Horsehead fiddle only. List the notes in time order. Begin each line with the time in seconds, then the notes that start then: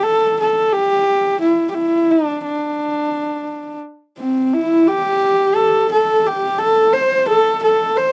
0.03 A4
0.40 A4
0.72 G4
1.41 E4
1.70 G4
1.74 E4
2.11 D4
2.44 D4
4.18 C4
4.54 E4
4.87 G4
5.55 A4
5.91 A4
6.27 G4
6.59 A4
6.93 C5
7.28 A4
7.62 A4
7.97 C5